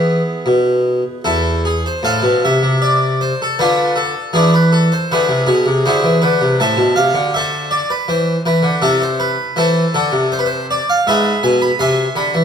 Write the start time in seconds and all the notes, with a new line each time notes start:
Already playing: E3 B3 E4 G#4
0.46 B2
1.24 E2 E4 A4
1.65 G#4
1.86 C5
2.03 A2 A4 C5 F5
2.22 B2
2.45 C3 E5
2.63 C3
2.82 D5
3.21 C5
3.42 A4
3.59 D3 D4 F4 B4
3.96 A4
4.33 E3 D4 E4 G#4
4.54 B4
4.72 A4
4.92 C5
5.12 D3 E4 G#4 B4
5.28 C3
5.46 B2 G#4
5.66 C3
5.86 D3 E4 G#4 C5
6.04 E3
6.22 D3 B4
6.41 C3
6.60 A2 C5 E5 A5
6.77 B2
6.96 C3 F5
7.14 D3
7.34 A4 C5 E5
7.71 D5
7.90 B4
8.08 E3 C5
8.46 E3 B4
8.63 D3
8.82 C3 C4 E4 A4
9.02 C5
9.20 B4
9.56 E3 E4 A4 C5
9.94 D3 A4
10.12 C3
10.32 C5
10.39 B4
10.46 C5
10.71 D5
10.90 F5
11.07 G#2 G#4 B4 E5
11.43 B2 G#5
11.62 B5
11.79 C3 E5 G#5 C6
12.16 D3 B5
12.34 E3